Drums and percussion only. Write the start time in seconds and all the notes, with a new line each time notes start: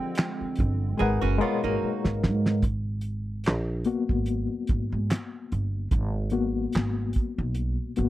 0.15 snare, clap, closed hi-hat
0.56 kick, closed hi-hat
2.05 snare
2.24 snare
2.46 snare
2.62 kick, closed hi-hat
3.01 closed hi-hat
3.44 snare, clap, closed hi-hat
3.84 closed hi-hat
4.09 kick
4.26 closed hi-hat
4.67 kick, closed hi-hat
5.11 snare, clap, closed hi-hat
5.52 closed hi-hat
5.91 kick, closed hi-hat
6.30 closed hi-hat
6.73 snare, clap, closed hi-hat
7.13 kick, closed hi-hat
7.55 closed hi-hat
7.96 closed hi-hat